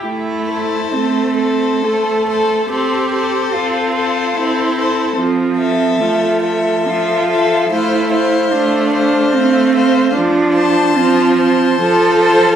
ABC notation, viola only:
X:1
M:3/4
L:1/8
Q:1/4=73
K:Am
V:1 name="Viola"
A,2 A,2 A,2 | C2 C2 C2 | F,2 F,2 F,2 | A,2 A,2 A,2 |
[K:Ddor] F,2 F,2 F,2 |]